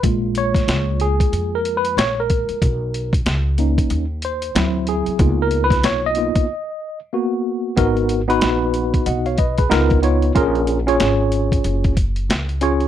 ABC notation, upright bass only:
X:1
M:4/4
L:1/16
Q:"Swing 16ths" 1/4=93
K:G#dor
V:1 name="Upright bass" clef=bass
A,,,4 C,,3 z E,,4 A,,,3 z | B,,,4 C,,3 z D,,4 =D,,3 z | C,,4 B,,,3 z8 z | G,,,4 A,,,4 B,,,4 C,,4 |
A,,,4 G,,,4 F,,,4 C,,4 |]